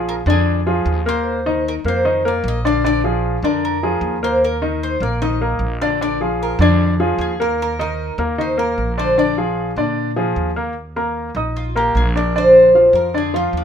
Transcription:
Already playing: A#1 F3 F4 G#4
0.09 A#4
0.26 F2 D3 D4 G#4 D5
0.67 F3 F4 G#4
0.86 D#2
1.06 A#3 A#4 C5
1.46 D#3 D#4 D#5
1.68 A#4
1.85 F2 A#3 A#4 C5
2.05 D#3 D#4 D#5
2.25 A#3 A#4 D5
2.44 A#1
2.48 D#5
2.65 D3 D4 D5 F5
2.84 D3 D4 D5
3.04 F3 F4 G#4
3.43 F2 D3 D4 A#4 D5
3.65 A#4
3.83 F3 F4 G#4
4.01 D#2
4.23 A#3 A#4 C5
4.44 A#4
4.62 D#3 D#4 D#5
4.83 C5
5.00 A#1 A#3 A#4 D5
5.22 D#3 D#4 D#5
5.41 A#3 A#4
5.59 A#1
5.81 D3 D4 D5 F5
6.01 D3 D4 D5
6.21 F3 F4 G#4
6.43 A#4
6.59 F2 D3 D4 G#4 D5
7.00 F3 F4 G#4
7.19 D#2 G#4
7.40 A#3 A#4
7.62 A#4
7.79 D#3 D#4 A#4 D#5
8.18 D#2 A#3 A#4
8.38 D#3 D#4 C5 D#5
8.57 A#3 A#4
8.78 A#1
8.98 D3 D4 C5 D5
9.18 D3 D4 D5
9.38 F3 F4 G#4
9.77 A#2 D3 D4 D5
10.16 F3 F4 G#4
10.36 D#2
10.56 A#3 A#4
10.96 A#3 A#4 A#5
11.35 A#1 D#4 D#5 D#6
11.56 F4
11.76 A#3 G4 A#4 A#5
11.95 A#1 G#4
12.15 D4 A#4 D5 D6
12.35 D3 D4 C5 D5
12.75 F3 F4 F5
12.93 F2 A#4
13.14 D3 D4 G#4 D5
13.34 F3 F4 F5
13.53 D#2
13.57 D4

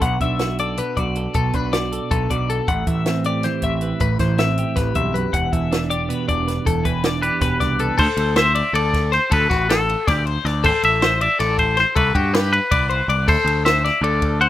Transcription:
Already playing: D4 F#4
0.01 B1 B2 F#5, kick, closed hi-hat
0.21 B1 D4 E5, kick, closed hi-hat
0.39 F#4, snare, closed hi-hat
0.58 A4 D5, closed hi-hat
0.77 B2 B4, closed hi-hat
0.97 B1 F#4 D5, kick, closed hi-hat
1.15 A4, closed hi-hat
1.34 B1 B2 A4, kick, closed hi-hat
1.53 B1 D4 B4, kick, closed hi-hat
1.73 F#4 D5, snare, closed hi-hat
1.92 A4, closed hi-hat
2.11 B1 B2 A4, kick, closed hi-hat
2.30 B1 F#4 D5, kick, closed hi-hat
2.50 A4, closed hi-hat
2.68 A1 A2 F#5, kick, closed hi-hat
2.87 A1 E3 E5, kick, closed hi-hat
3.06 C4, snare, closed hi-hat
3.24 G4 D5, closed hi-hat
3.43 E3 C5, snare, closed hi-hat
3.62 A1 C4 E5, kick, closed hi-hat
3.81 B4, closed hi-hat
4.00 A1 A2 B4, kick, closed hi-hat
4.19 A1 E3 C5, kick, snare, closed hi-hat
4.38 C4 E5, snare, closed hi-hat
4.58 G4, closed hi-hat
4.76 A1 A2 B4, kick, snare, closed hi-hat
4.95 B1 G2 E5, kick, closed hi-hat
5.14 F#2 B4, closed hi-hat
5.33 E1 E2 F#5, kick, closed hi-hat
5.52 E1 E3 E5, kick, closed hi-hat
5.71 D4, snare, closed hi-hat
5.90 G4 D5, closed hi-hat
6.09 B2 B4, closed hi-hat
6.27 E1 D4 D5, kick, closed hi-hat
6.48 B4, snare, closed hi-hat
6.65 E1 E2 A4, kick, closed hi-hat
6.83 E1 E3 B4, kick, closed hi-hat
7.04 D4 D5, snare, closed hi-hat
7.22 G4 B4, closed hi-hat
7.41 E1 B2 B4, kick, snare, closed hi-hat
7.60 C2 D4 D5, kick, snare, closed hi-hat
7.79 A4 B4, closed hi-hat
7.98 D2 A4 C5, kick, crash
8.17 D2, ride
8.36 C5 E5, snare, ride
8.55 D5, ride
8.73 D2 A4 D5, ride
8.94 kick, snare, ride
9.12 C5, snare, ride
9.31 D2 A4 B4, kick, ride
9.50 A1 F#4, kick, snare, ride
9.70 A4, snare, ride
9.89 ride
10.07 D2 D5, kick, snare, ride
10.26 C5, ride
10.45 D2 D5, snare, ride
10.64 A1 A4 C5, kick, crash
10.83 A1 E5, ride
11.02 C5, snare, ride
11.21 D5 E5, ride
11.39 A1 A4 D5, snare, ride
11.58 C5, kick, ride
11.77 C5, snare, ride
11.96 C2 A4 B4, kick, ride
12.15 G2 F#4 G4, kick, ride
12.34 G4 B4, snare, ride
12.53 B4, ride
12.71 C2 D5, kick, ride
12.90 C5, ride
13.08 C2 D5, ride
13.28 D2 A4 C5, kick, crash
13.45 D2, ride
13.65 C5 E5, snare, ride
13.85 D5, snare, ride
14.01 D2 A4 D5, ride
14.22 kick, ride
14.41 C5 F#5, ride

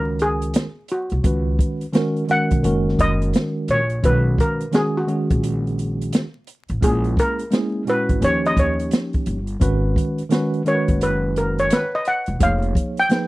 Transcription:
Already playing: C#2 D#3 G#3 C#4 F#4 A#4
0.19 G#4, closed hi-hat
0.42 closed hi-hat
0.54 snare, closed hi-hat
0.88 F#4, closed hi-hat
1.10 C2, closed hi-hat
1.23 C#2 D#3 G#3 C#4 F#4 B4, kick, closed hi-hat
1.59 kick, closed hi-hat
1.81 closed hi-hat
1.92 D#3 G#3 C#4 F#4 A#4, snare, closed hi-hat
2.16 closed hi-hat
2.27 D#3 G#3 C#4 F#4 A#4 F#5, closed hi-hat
2.51 B1, kick, closed hi-hat
2.63 F#1 D#3 G#3 C#4 F#4 A#4, closed hi-hat
2.88 snare
2.99 F#1 D#5, kick, closed hi-hat
3.22 closed hi-hat
3.33 snare, closed hi-hat
3.68 A#1 C#5, closed hi-hat
3.90 closed hi-hat
4.02 B1 D#3 G#3 C#4 F#4 B4, kick, closed hi-hat
4.38 A#4, kick, closed hi-hat
4.60 closed hi-hat
4.71 D#3 G#3 C#4 F#4 G#4, snare, closed hi-hat
4.97 F#4
5.07 D#3 G#3 C#4 F#4 G#4, closed hi-hat
5.30 A#1, kick, closed hi-hat
5.44 closed hi-hat
5.67 closed hi-hat
5.79 closed hi-hat
6.01 closed hi-hat
6.12 snare, closed hi-hat
6.47 closed hi-hat
6.68 A1, closed hi-hat
6.81 A#1 G#3 A#3 C#4 E4 G#4, kick, closed hi-hat
7.04 closed hi-hat
7.17 A#4, kick, closed hi-hat
7.39 closed hi-hat
7.51 G#3 A#3 C#4 E4 G#4, snare, closed hi-hat
7.85 A#2 G#3 C#4 E4 F#4, closed hi-hat
7.90 B4
8.09 G#1, kick, closed hi-hat
8.21 D#2 F3 A#3 C#4 D#4 G4 C#5, closed hi-hat
8.45 D#5, closed hi-hat
8.57 D#2 C#5, kick, closed hi-hat
8.80 closed hi-hat
8.91 snare, closed hi-hat
9.13 kick, closed hi-hat
9.26 G1, closed hi-hat
9.47 closed hi-hat
9.60 G#1 D#3 G#3 C#4 F#4 B4, kick, closed hi-hat
9.96 kick, closed hi-hat
10.18 closed hi-hat
10.29 D#3 G#3 C#4 F#4 B4, snare, closed hi-hat
10.54 closed hi-hat
10.65 D#3 G#3 C#4 F#4 A#4 C#5, closed hi-hat
10.75 B4
10.88 F#1, kick, closed hi-hat
11.01 B4, closed hi-hat
11.36 A#4, closed hi-hat
11.58 C#5, closed hi-hat
11.70 B4, snare, closed hi-hat
11.95 D#5
12.05 F#5, closed hi-hat
12.26 E1, closed hi-hat
12.39 F1 F3 A#3 D#4 G#4 C#5 F5, kick, closed hi-hat
12.62 closed hi-hat
12.75 kick, closed hi-hat
12.97 G5, closed hi-hat
13.09 F3 A#3 D#4 G#4 B4, snare, closed hi-hat

